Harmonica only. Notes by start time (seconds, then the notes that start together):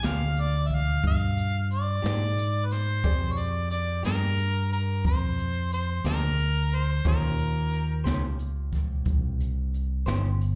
0.07 F5
0.40 D5
0.67 E5
0.75 F5
1.07 F5
1.73 D5
2.66 B4
2.73 C5
3.32 C#5
3.38 D5
3.71 D5
4.05 A#4
4.72 A#4
5.06 C5
5.74 C5
6.07 A#4
6.75 C5
7.08 A#4